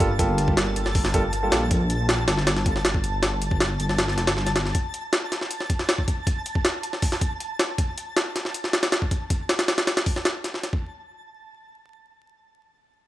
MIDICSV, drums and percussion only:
0, 0, Header, 1, 2, 480
1, 0, Start_track
1, 0, Key_signature, -2, "minor"
1, 0, Tempo, 379747
1, 240, Time_signature, 4, 2, 24, 8
1, 16526, End_track
2, 0, Start_track
2, 0, Title_t, "Drums"
2, 3, Note_on_c, 9, 36, 93
2, 4, Note_on_c, 9, 42, 67
2, 130, Note_off_c, 9, 36, 0
2, 131, Note_off_c, 9, 42, 0
2, 243, Note_on_c, 9, 36, 108
2, 244, Note_on_c, 9, 42, 87
2, 369, Note_off_c, 9, 36, 0
2, 370, Note_off_c, 9, 42, 0
2, 482, Note_on_c, 9, 42, 68
2, 605, Note_on_c, 9, 36, 91
2, 608, Note_off_c, 9, 42, 0
2, 722, Note_on_c, 9, 38, 116
2, 722, Note_on_c, 9, 42, 87
2, 731, Note_off_c, 9, 36, 0
2, 848, Note_off_c, 9, 38, 0
2, 848, Note_off_c, 9, 42, 0
2, 962, Note_on_c, 9, 42, 65
2, 1085, Note_on_c, 9, 38, 47
2, 1089, Note_off_c, 9, 42, 0
2, 1199, Note_on_c, 9, 46, 77
2, 1202, Note_on_c, 9, 36, 106
2, 1211, Note_off_c, 9, 38, 0
2, 1322, Note_on_c, 9, 38, 56
2, 1326, Note_off_c, 9, 46, 0
2, 1328, Note_off_c, 9, 36, 0
2, 1440, Note_on_c, 9, 42, 80
2, 1441, Note_on_c, 9, 36, 94
2, 1449, Note_off_c, 9, 38, 0
2, 1566, Note_off_c, 9, 42, 0
2, 1568, Note_off_c, 9, 36, 0
2, 1679, Note_on_c, 9, 42, 60
2, 1805, Note_off_c, 9, 42, 0
2, 1921, Note_on_c, 9, 38, 100
2, 1921, Note_on_c, 9, 42, 79
2, 2047, Note_off_c, 9, 38, 0
2, 2047, Note_off_c, 9, 42, 0
2, 2160, Note_on_c, 9, 42, 87
2, 2161, Note_on_c, 9, 36, 108
2, 2286, Note_off_c, 9, 42, 0
2, 2288, Note_off_c, 9, 36, 0
2, 2401, Note_on_c, 9, 42, 66
2, 2527, Note_off_c, 9, 42, 0
2, 2641, Note_on_c, 9, 38, 116
2, 2641, Note_on_c, 9, 42, 87
2, 2767, Note_off_c, 9, 38, 0
2, 2767, Note_off_c, 9, 42, 0
2, 2878, Note_on_c, 9, 38, 96
2, 2878, Note_on_c, 9, 42, 75
2, 3002, Note_off_c, 9, 38, 0
2, 3002, Note_on_c, 9, 38, 37
2, 3005, Note_off_c, 9, 42, 0
2, 3120, Note_off_c, 9, 38, 0
2, 3120, Note_on_c, 9, 38, 97
2, 3120, Note_on_c, 9, 42, 75
2, 3241, Note_off_c, 9, 38, 0
2, 3241, Note_on_c, 9, 38, 43
2, 3246, Note_off_c, 9, 42, 0
2, 3360, Note_on_c, 9, 42, 67
2, 3361, Note_on_c, 9, 36, 94
2, 3368, Note_off_c, 9, 38, 0
2, 3485, Note_on_c, 9, 38, 45
2, 3486, Note_off_c, 9, 42, 0
2, 3487, Note_off_c, 9, 36, 0
2, 3598, Note_off_c, 9, 38, 0
2, 3598, Note_on_c, 9, 38, 112
2, 3598, Note_on_c, 9, 42, 86
2, 3722, Note_on_c, 9, 36, 94
2, 3724, Note_off_c, 9, 38, 0
2, 3724, Note_off_c, 9, 42, 0
2, 3839, Note_on_c, 9, 42, 59
2, 3848, Note_off_c, 9, 36, 0
2, 3966, Note_off_c, 9, 42, 0
2, 4078, Note_on_c, 9, 38, 99
2, 4078, Note_on_c, 9, 42, 77
2, 4204, Note_off_c, 9, 38, 0
2, 4204, Note_off_c, 9, 42, 0
2, 4318, Note_on_c, 9, 42, 68
2, 4441, Note_on_c, 9, 36, 90
2, 4444, Note_off_c, 9, 42, 0
2, 4557, Note_on_c, 9, 38, 113
2, 4557, Note_on_c, 9, 42, 84
2, 4568, Note_off_c, 9, 36, 0
2, 4683, Note_off_c, 9, 38, 0
2, 4683, Note_off_c, 9, 42, 0
2, 4801, Note_on_c, 9, 42, 66
2, 4922, Note_on_c, 9, 38, 47
2, 4927, Note_off_c, 9, 42, 0
2, 5037, Note_off_c, 9, 38, 0
2, 5037, Note_on_c, 9, 38, 101
2, 5037, Note_on_c, 9, 42, 77
2, 5161, Note_off_c, 9, 38, 0
2, 5161, Note_on_c, 9, 38, 37
2, 5164, Note_off_c, 9, 42, 0
2, 5279, Note_off_c, 9, 38, 0
2, 5279, Note_on_c, 9, 38, 45
2, 5279, Note_on_c, 9, 42, 59
2, 5401, Note_off_c, 9, 38, 0
2, 5401, Note_off_c, 9, 42, 0
2, 5401, Note_on_c, 9, 38, 98
2, 5401, Note_on_c, 9, 42, 76
2, 5521, Note_off_c, 9, 38, 0
2, 5521, Note_on_c, 9, 38, 37
2, 5528, Note_off_c, 9, 42, 0
2, 5643, Note_off_c, 9, 38, 0
2, 5643, Note_on_c, 9, 38, 44
2, 5643, Note_on_c, 9, 42, 59
2, 5759, Note_off_c, 9, 38, 0
2, 5759, Note_off_c, 9, 42, 0
2, 5759, Note_on_c, 9, 38, 98
2, 5759, Note_on_c, 9, 42, 77
2, 5883, Note_off_c, 9, 38, 0
2, 5883, Note_on_c, 9, 38, 37
2, 5885, Note_off_c, 9, 42, 0
2, 6000, Note_on_c, 9, 42, 85
2, 6001, Note_on_c, 9, 36, 106
2, 6010, Note_off_c, 9, 38, 0
2, 6126, Note_off_c, 9, 42, 0
2, 6127, Note_off_c, 9, 36, 0
2, 6243, Note_on_c, 9, 42, 66
2, 6369, Note_off_c, 9, 42, 0
2, 6481, Note_on_c, 9, 38, 109
2, 6481, Note_on_c, 9, 42, 84
2, 6607, Note_off_c, 9, 38, 0
2, 6607, Note_off_c, 9, 42, 0
2, 6724, Note_on_c, 9, 38, 41
2, 6724, Note_on_c, 9, 42, 63
2, 6844, Note_off_c, 9, 38, 0
2, 6844, Note_on_c, 9, 38, 36
2, 6850, Note_off_c, 9, 42, 0
2, 6960, Note_on_c, 9, 42, 81
2, 6970, Note_off_c, 9, 38, 0
2, 7085, Note_on_c, 9, 38, 43
2, 7086, Note_off_c, 9, 42, 0
2, 7202, Note_on_c, 9, 36, 90
2, 7202, Note_on_c, 9, 42, 66
2, 7212, Note_off_c, 9, 38, 0
2, 7324, Note_on_c, 9, 38, 44
2, 7328, Note_off_c, 9, 36, 0
2, 7328, Note_off_c, 9, 42, 0
2, 7442, Note_off_c, 9, 38, 0
2, 7442, Note_on_c, 9, 38, 110
2, 7442, Note_on_c, 9, 42, 86
2, 7564, Note_on_c, 9, 36, 89
2, 7568, Note_off_c, 9, 38, 0
2, 7568, Note_off_c, 9, 42, 0
2, 7682, Note_off_c, 9, 36, 0
2, 7682, Note_on_c, 9, 36, 90
2, 7682, Note_on_c, 9, 42, 66
2, 7808, Note_off_c, 9, 42, 0
2, 7809, Note_off_c, 9, 36, 0
2, 7922, Note_on_c, 9, 36, 104
2, 7923, Note_on_c, 9, 42, 84
2, 8049, Note_off_c, 9, 36, 0
2, 8050, Note_off_c, 9, 42, 0
2, 8163, Note_on_c, 9, 42, 66
2, 8283, Note_on_c, 9, 36, 90
2, 8289, Note_off_c, 9, 42, 0
2, 8400, Note_on_c, 9, 38, 111
2, 8400, Note_on_c, 9, 42, 84
2, 8409, Note_off_c, 9, 36, 0
2, 8527, Note_off_c, 9, 38, 0
2, 8527, Note_off_c, 9, 42, 0
2, 8638, Note_on_c, 9, 42, 63
2, 8761, Note_on_c, 9, 38, 45
2, 8764, Note_off_c, 9, 42, 0
2, 8878, Note_on_c, 9, 46, 77
2, 8879, Note_on_c, 9, 36, 103
2, 8888, Note_off_c, 9, 38, 0
2, 9002, Note_on_c, 9, 38, 53
2, 9004, Note_off_c, 9, 46, 0
2, 9006, Note_off_c, 9, 36, 0
2, 9119, Note_on_c, 9, 36, 93
2, 9119, Note_on_c, 9, 42, 75
2, 9129, Note_off_c, 9, 38, 0
2, 9245, Note_off_c, 9, 36, 0
2, 9246, Note_off_c, 9, 42, 0
2, 9359, Note_on_c, 9, 42, 57
2, 9486, Note_off_c, 9, 42, 0
2, 9600, Note_on_c, 9, 38, 100
2, 9600, Note_on_c, 9, 42, 76
2, 9726, Note_off_c, 9, 38, 0
2, 9726, Note_off_c, 9, 42, 0
2, 9838, Note_on_c, 9, 36, 103
2, 9838, Note_on_c, 9, 42, 84
2, 9964, Note_off_c, 9, 36, 0
2, 9965, Note_off_c, 9, 42, 0
2, 10081, Note_on_c, 9, 42, 67
2, 10207, Note_off_c, 9, 42, 0
2, 10320, Note_on_c, 9, 38, 111
2, 10320, Note_on_c, 9, 42, 82
2, 10447, Note_off_c, 9, 38, 0
2, 10447, Note_off_c, 9, 42, 0
2, 10562, Note_on_c, 9, 38, 40
2, 10562, Note_on_c, 9, 42, 61
2, 10682, Note_off_c, 9, 38, 0
2, 10682, Note_on_c, 9, 38, 35
2, 10688, Note_off_c, 9, 42, 0
2, 10799, Note_on_c, 9, 42, 82
2, 10808, Note_off_c, 9, 38, 0
2, 10922, Note_on_c, 9, 38, 41
2, 10926, Note_off_c, 9, 42, 0
2, 11039, Note_off_c, 9, 38, 0
2, 11039, Note_on_c, 9, 38, 97
2, 11039, Note_on_c, 9, 42, 75
2, 11159, Note_off_c, 9, 38, 0
2, 11159, Note_off_c, 9, 42, 0
2, 11159, Note_on_c, 9, 38, 96
2, 11159, Note_on_c, 9, 42, 73
2, 11278, Note_off_c, 9, 38, 0
2, 11278, Note_off_c, 9, 42, 0
2, 11278, Note_on_c, 9, 38, 108
2, 11278, Note_on_c, 9, 42, 81
2, 11401, Note_on_c, 9, 36, 91
2, 11405, Note_off_c, 9, 38, 0
2, 11405, Note_off_c, 9, 42, 0
2, 11518, Note_on_c, 9, 42, 64
2, 11519, Note_off_c, 9, 36, 0
2, 11519, Note_on_c, 9, 36, 91
2, 11645, Note_off_c, 9, 36, 0
2, 11645, Note_off_c, 9, 42, 0
2, 11758, Note_on_c, 9, 42, 81
2, 11759, Note_on_c, 9, 36, 103
2, 11885, Note_off_c, 9, 42, 0
2, 11886, Note_off_c, 9, 36, 0
2, 11999, Note_on_c, 9, 38, 95
2, 11999, Note_on_c, 9, 42, 74
2, 12121, Note_off_c, 9, 38, 0
2, 12121, Note_off_c, 9, 42, 0
2, 12121, Note_on_c, 9, 38, 94
2, 12121, Note_on_c, 9, 42, 73
2, 12238, Note_off_c, 9, 38, 0
2, 12238, Note_off_c, 9, 42, 0
2, 12238, Note_on_c, 9, 38, 98
2, 12238, Note_on_c, 9, 42, 75
2, 12360, Note_off_c, 9, 38, 0
2, 12360, Note_off_c, 9, 42, 0
2, 12360, Note_on_c, 9, 38, 96
2, 12360, Note_on_c, 9, 42, 72
2, 12478, Note_off_c, 9, 38, 0
2, 12478, Note_off_c, 9, 42, 0
2, 12478, Note_on_c, 9, 38, 92
2, 12478, Note_on_c, 9, 42, 72
2, 12602, Note_off_c, 9, 38, 0
2, 12602, Note_off_c, 9, 42, 0
2, 12602, Note_on_c, 9, 38, 92
2, 12602, Note_on_c, 9, 42, 73
2, 12718, Note_on_c, 9, 46, 75
2, 12721, Note_on_c, 9, 36, 102
2, 12728, Note_off_c, 9, 38, 0
2, 12728, Note_off_c, 9, 42, 0
2, 12845, Note_off_c, 9, 46, 0
2, 12845, Note_on_c, 9, 38, 52
2, 12847, Note_off_c, 9, 36, 0
2, 12958, Note_off_c, 9, 38, 0
2, 12958, Note_on_c, 9, 38, 99
2, 12958, Note_on_c, 9, 42, 74
2, 13085, Note_off_c, 9, 38, 0
2, 13085, Note_off_c, 9, 42, 0
2, 13199, Note_on_c, 9, 38, 36
2, 13199, Note_on_c, 9, 42, 57
2, 13325, Note_off_c, 9, 38, 0
2, 13325, Note_on_c, 9, 38, 33
2, 13326, Note_off_c, 9, 42, 0
2, 13442, Note_off_c, 9, 38, 0
2, 13442, Note_on_c, 9, 38, 47
2, 13442, Note_on_c, 9, 42, 63
2, 13563, Note_on_c, 9, 36, 88
2, 13569, Note_off_c, 9, 38, 0
2, 13569, Note_off_c, 9, 42, 0
2, 13689, Note_off_c, 9, 36, 0
2, 16526, End_track
0, 0, End_of_file